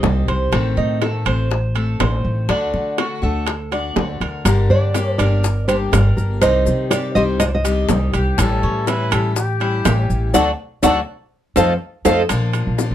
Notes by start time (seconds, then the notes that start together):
Already playing: C5 D#5
0.03 C2 D#3 G3 C4 G4, high bongo, low bongo, low timbale
0.28 C2 C5, high bongo, high timbale
0.52 A1 D#3 A3 C4, high bongo, high timbale
0.77 A2 D#4
1.01 D#3 A3 C4 A4, high bongo, high timbale, low timbale
1.25 A1 A3 C4 C5, high timbale
1.51 muted steel-string acoustic guitar stroke, high bongo
1.75 A3 C4 A4, high timbale
1.99 A1 D#3 C4 C5, high bongo, low bongo, high timbale, low timbale
2.25 A1
2.49 D2 D3 A3 D4 F#4, high bongo, high timbale
2.74 D3, high bongo
2.98 D3 A3 D4 F#4, high bongo, high timbale, low timbale
3.22 D2 A3 D4 F#4 A4
3.47 muted steel-string acoustic guitar stroke, high bongo, high timbale
3.71 A3 D4 F#4 D5, high bongo, high timbale
3.96 D2 D3 A3 D4 F#4, high bongo, low bongo, low timbale
4.21 D2 A#4, high bongo, high timbale
4.45 G1 D3 G3 A#3 D4 G4 A#4, high bongo, high timbale, maracas
4.70 G2 D4 D5
4.94 G3 A#3 D4 G4, high bongo, high timbale, low timbale, maracas
5.18 G1 G3 A#3 D4 G4 A#4 D5, high timbale, maracas
5.44 muted steel-string acoustic guitar stroke, high bongo, maracas
5.68 G3 A#3 D4 G4 C5, high timbale, maracas
5.92 G1 G3 A#3 D4 G4 A#4, high bongo, low bongo, high timbale, low timbale, maracas
6.17 G1 A#4, maracas
6.41 C2 C3 D#3 G3 C4 D#4 G4 C5, high bongo, high timbale, maracas
6.66 C3, high bongo, maracas
6.91 D#3 G3 C4 G4 D5, high bongo, high timbale, low timbale, maracas
7.15 C2 D#3 G3 C4 G4 C5 D#5, maracas
7.40 D#5, muted steel-string acoustic guitar stroke, high bongo, high timbale, maracas
7.48 D5
7.55 D#5
7.64 D#3 G3 C4 G4 D#5, high bongo, high timbale, maracas
7.89 C2 D#3 G3 C4 G4, high bongo, low bongo, low timbale, maracas
8.13 C2 G4, high bongo, high timbale, maracas
8.38 A1 E3 G3 C#4 E4 A4, high bongo, high timbale, maracas
8.63 A2 C#4
8.87 E3 G3 C#4 E4 B4, high bongo, high timbale, low timbale, maracas
9.11 A1 G3 C#4 E4 G4 A4, high timbale, maracas
9.36 G4, muted steel-string acoustic guitar stroke, high bongo, maracas
9.60 G3 C#4 E4, high timbale
9.85 A1 E3 G3 C#4 E4 G4, high bongo, low bongo, high timbale, low timbale, maracas
10.10 A1, maracas
10.34 D2 F#3 A3 D4 F#4 A4 D5 F#5, high bongo, high timbale, maracas
10.82 D2 F#3 A3 D4 F#4 A4 D5 F#5, high bongo, high timbale, maracas
11.56 F2 F3 A3 C4 D#4 F4 A4 C5 D#5 F5, high bongo, high timbale, maracas
12.05 F2 F3 A3 C4 D#4 F4 A4 C5 D#5 F5, high bongo, high timbale, maracas
12.29 A#1 F3 A#3 D4 F4, high bongo, high timbale, maracas
12.53 high bongo, high timbale, maracas
12.67 A#1
12.78 F3 A#3 D4 F4, high bongo, low timbale, maracas
12.91 A#2